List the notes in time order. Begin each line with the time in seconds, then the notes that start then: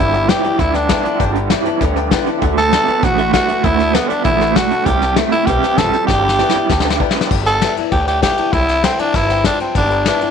Already playing: G2
0.00 G1 D3 G3 E4
0.13 G2 D3 B4 D5 G5, closed hi-hat
0.28 G2 E3 G3 B3 E4 G4 B4 D5 G5, snare, closed hi-hat
0.43 G2 E3 B3 E4 B4 D5 G5, muted upright bass stroke, closed hi-hat
0.58 D2 G2 D3 E4 B4 D5 G5, kick, snare, closed hi-hat
0.74 G2 D3 D4 B4 D5 G5, snare, closed hi-hat
0.89 G2 D3 G3 B3 E4 B4 D5 G5, kick, snare, closed hi-hat
1.04 G2 D3 B3 E4 B4 D5 G5, muted upright bass stroke, closed hi-hat
1.19 G1 G2 D3 G3 B4 D5 G5, kick, closed hi-hat
1.35 G2 D3 B4 D5 G5, closed hi-hat
1.50 G2 E3 G3 B3 E4 B4 D5 G5, snare, closed hi-hat
1.65 G2 E3 B3 E4 B4 D5 A5, muted upright bass stroke, closed hi-hat
1.81 D2 G2 D3 B4 D5 G5 B5, kick, snare, closed hi-hat
1.96 G2 D3 B4 D5 G5, closed hi-hat
2.04 G5
2.11 G2 D3 G3 B3 E4 B4 D5 E5 G5, kick, snare, closed hi-hat
2.26 G2 D3 B3 E4 B4 D5 A5, muted upright bass stroke, closed hi-hat
2.42 D2 D3 A3 A4 D5 F#5, kick, closed hi-hat
2.57 D3 A3 A4 E5, snare, closed hi-hat
2.71 D3 A3 B3 F#4 A4 D5 A5, snare, closed hi-hat
2.87 D3 B3 F#4 A4 D5 F#5, muted upright bass stroke, closed hi-hat
3.03 A1 A2 D3 A3 F#4 A4 D5 F#5, kick, snare, closed hi-hat
3.18 D3 A3 A4 D5 F#5, closed hi-hat
3.33 D3 A3 B3 F#4 A4 D5 F#5, kick, snare, closed hi-hat
3.48 D3 A3 B3 F#4 A4 D5 E5, muted upright bass stroke, closed hi-hat
3.63 D2 D3 A3 E4 A4 D5 F#5, kick, closed hi-hat
3.79 D3 A3 A4 A5, snare, closed hi-hat
3.94 D3 A3 B3 F#4 A4 D5 E5, snare, closed hi-hat
4.09 D3 B3 D4 F#4 A4 D5 F#5, muted upright bass stroke, closed hi-hat
4.24 A1 D3 E3 A3 E4 A4 D5 F#5, kick, closed hi-hat
4.40 D3 A3 A4 D5 F#5, snare, closed hi-hat
4.56 B2 D3 A3 F#4 A4 D5 F#5, kick, snare, closed hi-hat
4.71 D3 A3 A4 D5 A5, muted upright bass stroke, closed hi-hat
4.86 C2 C3 G3 G4 C5 E5 G5, kick, closed hi-hat
5.01 C3 G3 C5 E5 A5, snare, closed hi-hat
5.16 C3 E3 A3 C4 E4 C5 E5 G5, snare, closed hi-hat
5.32 C3 A3 C4 E4 C5 G5, muted upright bass stroke, closed hi-hat
5.46 B1 C3 E3 G3 G4 C5 E5, kick, snare, closed hi-hat
5.62 C3 G3 C5 E5 G5, muted upright bass stroke, snare, closed hi-hat
5.77 A1 C3 F3 G3 A4 C5 G5, kick, snare, closed hi-hat
5.93 C3 G3 E5 G5, muted upright bass stroke, snare, closed hi-hat
6.07 G1 G2 D3 G3 G4 B4 D5 G5, kick, snare
6.23 G2 D3 B4 D5 G5
6.29 snare
6.38 G2 E3 G3 B3 E4 B4 D5 A5, snare
6.49 snare
6.54 G2 E3 B3 E4 B4 D5 G5, muted upright bass stroke
6.69 D2 G2 D3 B4 D5 A5, kick, snare
6.80 snare
6.85 G2 D3 B4 D5 E5 G5
6.90 snare
7.00 G2 D3 G3 B3 E4 B4 D5 G5, kick
7.11 snare
7.15 G2 D3 B3 E4 B4 D5 E5 B5, muted upright bass stroke
7.21 snare
7.31 G1 G3 B4 D5 G5, kick, crash
7.46 A4 B4 D5 E5, snare, ride
7.61 G3 B3 E4 B4 D5 G5, snare, ride
7.76 B3 E4 B4 D5 A5, muted upright bass stroke, ride
7.91 D2 D3 G4 B4 D5 G5, kick, ride
8.06 G4 B4 D5 E5, snare, ride
8.22 G3 B3 E4 G4 B4 D5 G5, kick, snare, ride
8.37 B3 E4 B4 D5 A5, muted upright bass stroke, ride
8.52 C2 C3 E4 C5 E5 G5, kick, ride
8.68 C5 E5 G5, snare, ride
8.82 E3 A3 C4 E4 C5 G5, snare, ride
8.98 C4 D4 E4 C5 E5 G5, muted upright bass stroke, ride
9.13 G1 E3 E4 C5 E5 A5, kick, snare, ride
9.29 C5 E5 G5, snare, ride
9.44 F3 D4 C5 G5, kick, snare, ride
9.60 C4 C5 E5 A5, muted upright bass stroke, ride
9.75 G1 G3 D4 B4 D5 G5, kick, ride
9.90 B4 D5 G5, ride
10.05 G3 B3 D4 E4 B4 D5 A5, snare, ride
10.21 B3 E4 B4 D5 G5, muted upright bass stroke, ride